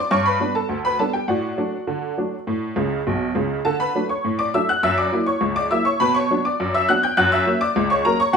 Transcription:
honky-tonk piano
Already playing: D6
0.00 D5
0.11 G2 C#5 C#6
0.26 B4 B5
0.40 G3 B3 D4
0.55 A4 A5
0.69 D2
0.85 B4 B5
0.99 G3 B3 D4 A4 A5
1.13 G4 G5
1.28 A2 F#4 D5 F#5
1.57 F#3 A3 D4
1.87 D3
2.18 F#3 A3 D4
2.47 A2
2.76 C#2 C#3
3.07 B1 B2
3.35 C#2 C#3
3.65 D3 A4 A5
3.80 B4 B5
3.95 F#3 A3 D4
4.09 C#5 C#6
4.25 A2
4.39 D5 D6
4.54 F#3 A3 D4 E5 E6
4.69 F#5 F#6
4.83 F#2 E5 E6
4.98 D5 D6
5.12 F#3 A#3 E4
5.26 C#5 C#6
5.41 C#2
5.56 D5 D6
5.71 F#3 A#3 E4 E5 E6
5.85 C#5 C#6
6.00 B2 B4 B5
6.15 C#5 C#6
6.30 F#3 B3 D4
6.45 D5 D6
6.60 F#2
6.75 E5 E6
6.89 F#3 B3 D4 F#5 F#6
7.03 G5 G6
7.17 F#2 F#5 F#6
7.32 E5 E6
7.46 F#3 A#3 C#4
7.61 D5 D6
7.76 C#2
7.90 C#5 C#6
8.05 F#3 A#3 C#4 A#4 A#5
8.20 C#5 C#6
8.33 B2 F#5

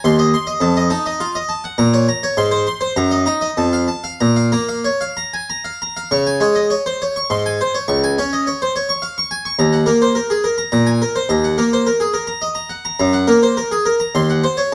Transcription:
harpsichord
0.04 D#2 C6
0.19 D#5
0.34 C6
0.47 D#5
0.61 F2 A5
0.77 D#5
0.90 D#4 A5
1.06 D#5
1.20 F4
1.35 D#5
1.49 A5
1.64 F#5
1.78 A#2 A#5
1.94 C#5
2.09 A#5
2.23 C#5
2.37 G#2 C6
2.51 C5
2.67 C6
2.81 C5
2.96 F#2 A#5
3.11 D#5
3.26 D#4 A#5
3.41 D#5
3.57 F2 A5
3.73 F5
3.88 A5
4.04 F5
4.21 A#2 A#5
4.36 F5
4.52 A#3 A#5
4.69 F5
4.84 C#5
5.01 F5
5.17 A#5
5.34 G#5
5.50 A#5
5.65 F5
5.82 A#5
5.97 F5
6.11 C#3 C#6
6.27 G#5
6.40 G#3 C#5
6.55 D#5
6.70 C#5
6.86 C5
7.02 C#5
7.16 C#6
7.30 G#2 C6
7.46 G#5
7.61 C5
7.74 C#5
7.88 C#2 C#6
8.04 G#5
8.18 C#4 C#5
8.33 D#5
8.47 C#5
8.62 C5
8.76 C#5
8.89 C#6
9.02 F5
9.18 C#6
9.31 G#5
9.45 C#6
9.59 D#2 A#5
9.73 F#5
9.86 A#3 A#4
10.02 C5
10.15 A#4
10.30 G#4
10.44 A#4
10.58 A#5
10.72 A#2 A#5
10.87 G#5
11.02 A#4
11.16 C5
11.29 D#2 A#5
11.44 F#5
11.58 A#3 A#4
11.73 C5
11.87 A#4
12.00 G#4
12.14 A#4
12.27 A#5
12.42 D#5
12.55 A#5
12.70 F#5
12.85 A#5
12.99 F#2 A#5
13.13 F#5
13.27 A#3 A#4
13.43 C5
13.57 A#4
13.71 G#4
13.86 A#4
14.00 A#5
14.15 D#2 C6
14.30 F#5
14.44 C5
14.57 C#5

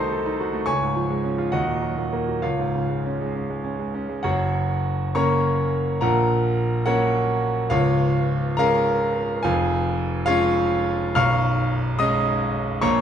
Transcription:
grand piano
Already playing: C2 C3 D#3 A3 F#4 A4 C5 D#5 A5 C6 D#6
0.00 D#4
0.12 A4
0.26 D#4
0.40 F#4
0.53 A3
0.66 C#2 C#5 G#5 C#6
0.81 G#2
0.96 F3
1.10 G#3
1.24 C#4
1.38 F4
1.52 D#2 F#4 D#5 F#5
1.68 A#2
1.82 F#3
1.98 A#2
2.13 A#3
2.28 F#3
2.42 C#2 F4 C#5 F5
2.59 G#2
2.75 C#3
2.89 G#3
3.06 C#4
3.21 G#3
3.35 C#4
3.50 G#3
3.64 C#4
3.79 G#3
3.94 C#4
4.09 G#3
4.23 F#1 F#2 F#4 C#5 F#5
5.15 C#3 A#3 C#4 C#5 A#5 C#6
6.01 A#1 A#2 A#4 F#5 A#5
6.86 F#3 A#3 C#4 F#4 C#5 F#5
7.70 C#1 C#2 F4 C#5 F5
8.57 G#3 C#4 A#4 F5 A#5
9.43 F1 F2 G#4 F5 G#5
10.26 G#3 C#4 F4 C#5 F5
11.15 B0 B1 F5 C#6 F6
11.99 G#3 C#4 D#5 D#6
12.82 A#1 A#2 C#5 A#5 C#6

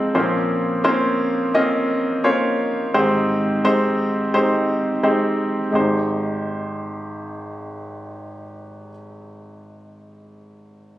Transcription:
grand piano
Already playing: F2 C3 G#3 C4 D#4 F4 G4 C5
0.15 A#2 F3 A#3 C4 C#4 F4 C5
0.84 A#3 C4 C#4 F4 C5
1.54 A#3 C4 C#4 F4 D#5
2.24 A#3 C#4 F4 C5 C#5
2.94 G#2 D#3 G#3 C4 D#4 G4 C5
3.65 G#3 C4 D#4 G4 C5
4.34 G#3 C4 D#4 G4 C5
5.03 G#3 C4 D#4 G4 C5
5.71 G#1 G#3 D#4 G4
5.75 C5

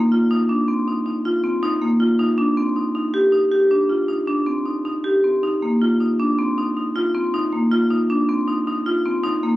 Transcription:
marimba
0.12 F4
0.31 D#4
0.49 D4
0.68 C4
0.88 D#4
1.06 D#4
1.25 F4
1.44 C4
1.63 D#4
1.82 A#3
2.00 F4
2.19 D#4
2.38 D4
2.57 C4
2.76 D#4
2.95 D#4
3.14 G4
3.32 D#4
3.52 G4
3.71 D4
3.89 F4
4.08 D#4
4.28 D4
4.46 C4
4.65 D#4
4.85 D#4
5.04 G4
5.24 C4
5.43 D#4
5.62 A#3
5.82 F4
6.00 D#4
6.20 D4
6.38 C4
6.58 D#4
6.77 D#4
6.96 F4
7.15 C4
7.34 D#4
7.53 A#3
7.72 F4
7.91 D#4
8.10 D4
8.29 C4
8.48 D#4
8.67 D#4
8.86 F4
9.05 C4
9.24 D#4
9.43 A#3

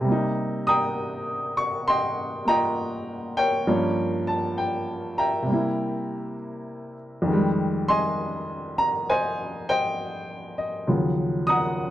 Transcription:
upright piano
0.01 C3 G3
0.08 A#3 D#4
0.67 G5 A#5 D#6
1.57 C#6
1.88 D#5 G5 C6
2.45 A#3 F4 D#5 G5 A#5
3.37 A#4 C#5 G5
3.67 G2 F3 A#3 C#4
4.27 A5
4.58 G5
5.18 E5 G5 A#5
5.42 C3 G3
5.50 A#3 E4
7.22 F2 D#3
7.29 G3 G#3
7.88 D#5 G#5 C6
8.78 A#5
9.10 C5 D#5 G#5
9.69 C5 D#5 G5
10.58 D#5
10.87 D#2 C#3 F3 F#3
11.47 F#5 A#5 D#6

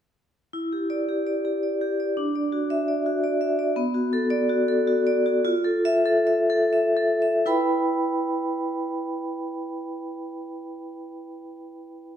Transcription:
vibraphone
0.53 E4
0.72 G4
0.90 D5
1.09 G4
1.27 D5
1.45 G4
1.63 D5
1.81 G4
2.00 D5
2.17 D4
2.36 D5
2.52 F#4
2.70 E5
2.88 D5
3.06 F#4
3.24 D5
3.41 E5
3.59 D5
3.76 B3
3.94 F#4
4.13 A4
4.30 D5
4.50 F#4
4.68 A4
4.88 F#4
5.07 D5
5.26 F#4
5.45 F4
5.64 A4
5.85 E5
6.05 A4
6.27 E5
6.50 A4
6.73 E5
6.97 A4
7.22 E5
7.46 E4 B4 G5 B5

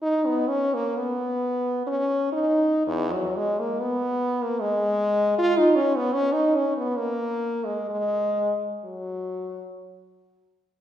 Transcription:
french horn
0.02 D#4
0.26 B3
0.49 C#4
0.74 A#3
0.97 B3
1.87 C#4
2.33 D#4
2.87 E2
3.13 F#3
3.36 G#3
3.60 A#3
3.80 B3
4.43 A#3
4.61 G#3
5.38 F4
5.58 D#4
5.76 C#4
5.96 B3
6.13 C#4
6.33 D#4
6.56 C#4
6.77 B3
6.98 A#3
7.65 G#3
7.90 G#3
8.84 F#3

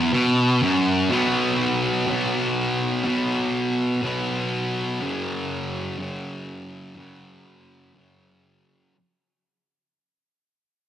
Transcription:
distorted electric guitar
Already playing: E2
0.13 B2
0.63 F#2
1.09 B2 F#3
1.14 B3
2.07 B2 F#3
2.11 B3
3.04 B2 F#3
3.08 B3
4.02 B2 F#3
4.06 B3
5.00 F#2 C#3 F#3
5.98 F#2 C#3
6.03 F#3
6.96 F#2 C#3
7.00 F#3
7.94 F#2 C#3
7.98 F#3

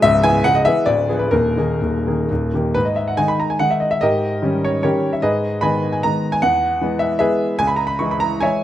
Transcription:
grand piano
0.02 C#1 C#2 E5
0.24 E3 B3 G#4 G#5
0.44 C#1 C#2 F#5
0.55 D#5
0.65 E3 B3 G#4 E5
0.86 D1 D2 D5
1.09 F3 B3 G#4
1.19 B4
1.31 D#1 D#2 A#4
1.57 D#3 A#3 G#4
1.82 D#1 D#2
2.07 D#3 A#3 G#4
2.31 D#1 D#2
2.54 D#3 A#3 G4
2.74 G#2 B4
2.85 D#5
2.96 E5
3.08 F#5
3.17 D#3 G#3 D#4 G#5
3.28 B5
3.40 A#5
3.50 G#5
3.59 D#3 G#3 D#4 F#5
3.71 E5
3.80 D#5
3.91 E5
4.01 G#2 G4 A#4 D#5
4.42 D#3 G3 C#4
4.64 C#5
4.83 D#3 G3 C#4 G4 A#4 C#5
5.13 E5
5.22 G#2 G#4 B4 D#5
5.61 D#3 G#3 B3 D#5 G#5 B5
5.92 G#5
6.03 D#3 G#3 B3 A#5
6.32 G#5
6.42 E2 F#5
6.81 E3 G#3 B3
6.99 E5
7.19 E3 G#3 B3 G#4 B4 E5
7.59 C#2 G#5
7.67 B5
7.76 A#5
7.87 B5
7.99 E3 G#3 E4 C#6
8.11 B5
8.20 A#5
8.41 E3 G#3 E4 C#5 E5 G#5

